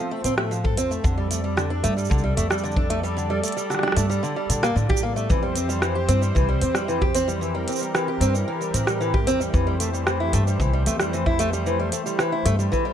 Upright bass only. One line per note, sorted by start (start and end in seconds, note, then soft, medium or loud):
0.24 0.78 A2 medium
0.78 0.99 F2 medium
1.04 1.80 F2 loud
1.84 2.06 G2 loud
2.11 2.32 C2 loud
2.37 3.39 F2 medium
3.96 4.18 G2 medium
4.49 4.71 A#2 medium
4.76 5.25 A2 medium
5.30 6.05 F2 medium
6.09 6.30 G2 loud
6.36 6.57 C2 loud
6.62 7.64 F2 medium
8.21 8.42 G2 loud
8.74 9.27 A2 medium
9.27 9.49 F2 medium
9.54 10.29 F2 medium
10.33 10.55 G2 loud
10.60 10.81 C2 loud
10.87 11.89 F2 medium
12.45 12.67 G2 loud